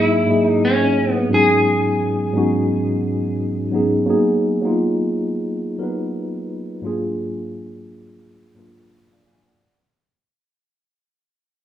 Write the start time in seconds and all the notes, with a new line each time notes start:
Already playing: G#2 F#3 A#3 D#4 E4 G#4
0.26 G#2 F#3 A#3 E4 D#5
0.31 G#4
0.44 D#4
0.65 C#4
1.13 B3
1.29 G#2 F#3 B3 C#4 D#4
1.34 G#4
2.33 G#2 F#3 B3 C#4 D#4
2.38 F#4
3.71 G#2 F#3 B3 C#4 D#4
3.76 G#4
4.05 F#3 A#3 B3 D#4
4.10 G#4
4.62 F#3 A#3 B3 D#4
4.67 F4
5.78 F#3 B3 D#4 A#4
5.83 B4
6.82 G#2 F#3 A#3 D4 F4
6.87 G#4
8.54 G#2 F#3 A#3 D4 F4
8.59 A#4
9.12 D5 F5
9.26 F5 G#5
9.47 D5 F#5